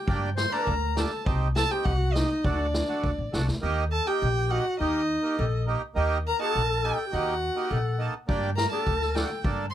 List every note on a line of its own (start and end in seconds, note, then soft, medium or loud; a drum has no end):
0.07 0.43 G2 medium
0.07 0.29 A#3 medium
0.07 0.30 D4 medium
0.07 0.30 G4 medium
0.07 kick medium
0.36 0.52 C5 medium
0.36 0.54 C6 medium
0.36 snare medium
0.50 0.74 A#3 medium
0.50 0.74 D4 medium
0.50 0.74 A4 medium
0.50 0.96 A#4 medium
0.50 1.00 A#5 medium
0.50 snare soft
0.67 1.03 D2 loud
0.67 kick medium
0.96 1.11 A#3 medium
0.96 1.11 D4 medium
0.96 1.12 G4 medium
0.96 1.24 A4 medium
0.96 1.27 A5 medium
0.96 snare medium
1.24 1.62 C2 medium
1.24 1.47 C4 medium
1.24 1.48 D#4 medium
1.24 1.48 G4 medium
1.24 kick medium
1.56 1.73 A4 medium
1.56 1.73 A5 loud
1.56 snare medium
1.70 1.93 C4 medium
1.70 1.93 D#4 medium
1.70 1.93 G4 medium
1.70 1.88 G4 medium
1.70 1.86 G5 medium
1.85 2.21 C2 medium
1.85 2.18 F#4 medium
1.85 2.15 F#5 medium
1.85 kick medium
2.13 2.29 C4 medium
2.13 2.30 D#4 medium
2.13 2.45 D#4 medium
2.13 2.30 G4 medium
2.13 2.46 D#5 medium
2.13 snare medium
2.44 2.80 D2 medium
2.44 2.66 A3 medium
2.44 2.67 D4 medium
2.44 2.54 D4 medium
2.44 2.67 F#4 medium
2.44 3.33 D5 medium
2.44 kick medium
2.53 2.60 D#4 medium
2.58 3.33 D4 medium
2.74 snare medium
2.87 3.10 A3 medium
2.87 3.10 D4 medium
2.87 3.11 F#4 medium
3.04 3.12 D2 medium
3.04 kick medium
3.18 3.31 A1 medium
3.32 3.46 C2 medium
3.32 3.47 A3 medium
3.32 3.47 D4 medium
3.32 3.48 F#4 medium
3.32 snare medium
3.48 3.61 D2 medium
3.48 snare medium
3.61 3.98 D#2 medium
3.61 3.84 A#3 medium
3.61 3.84 D#4 medium
3.61 3.84 G4 loud
3.91 4.05 A4 medium
3.91 4.09 A5 loud
4.05 4.28 A#3 medium
4.05 4.28 D#4 medium
4.05 4.29 G4 medium
4.05 4.53 G4 medium
4.05 4.52 G5 medium
4.22 4.57 A#1 loud
4.49 4.64 A#3 medium
4.49 4.64 D#4 medium
4.49 4.79 F#4 medium
4.49 4.65 G4 medium
4.49 4.78 F#5 medium
4.79 5.15 D#2 medium
4.79 5.01 A#3 medium
4.79 5.34 D#4 medium
4.79 5.02 D#4 medium
4.79 5.02 G4 medium
4.79 5.63 D#5 medium
5.22 5.45 A#3 medium
5.22 5.45 D#4 medium
5.22 5.46 G4 medium
5.39 5.74 A#1 loud
5.39 5.66 A4 medium
5.66 5.81 A#3 medium
5.66 5.82 D#4 medium
5.66 5.82 G4 medium
5.95 6.31 D#2 medium
5.95 6.18 A#3 loud
5.95 6.18 D#4 medium
5.95 6.18 G4 loud
6.27 6.40 A#4 medium
6.27 6.40 A#5 loud
6.39 6.61 A#3 medium
6.39 6.62 D#4 medium
6.39 6.62 F#4 medium
6.39 7.03 A4 medium
6.39 6.86 A5 loud
6.55 6.90 A#1 loud
6.83 6.98 A#3 medium
6.83 6.98 D#4 medium
6.83 6.99 G4 medium
6.83 7.16 G5 medium
7.07 7.14 G4 medium
7.12 7.48 D#2 medium
7.12 7.34 A#3 medium
7.12 7.34 D#4 medium
7.12 7.73 F#4 medium
7.12 7.35 G4 medium
7.12 8.01 F#5 medium
7.55 7.78 A#3 medium
7.55 7.78 D#4 medium
7.55 7.78 G4 medium
7.71 8.06 A#1 loud
7.71 8.00 A4 medium
7.98 8.14 A#3 medium
7.98 8.14 D#4 medium
7.98 8.14 A4 medium
8.27 8.64 G2 medium
8.27 8.50 A#3 medium
8.27 8.50 D4 medium
8.27 8.51 G4 loud
8.27 kick medium
8.56 8.71 A#4 medium
8.56 8.69 A#5 loud
8.56 snare medium
8.70 8.93 A#3 medium
8.70 8.94 D4 medium
8.70 8.94 G4 medium
8.70 9.40 A4 medium
8.70 9.17 A5 medium
8.87 9.21 D2 medium
8.87 kick medium
9.01 snare soft
9.14 9.29 A#3 medium
9.14 9.30 D4 medium
9.14 9.30 F#4 medium
9.14 9.44 G5 medium
9.14 snare medium
9.44 9.74 G2 medium
9.44 9.66 A#3 medium
9.44 9.66 D4 medium
9.44 9.66 A4 medium
9.44 kick medium
9.71 9.74 C6 loud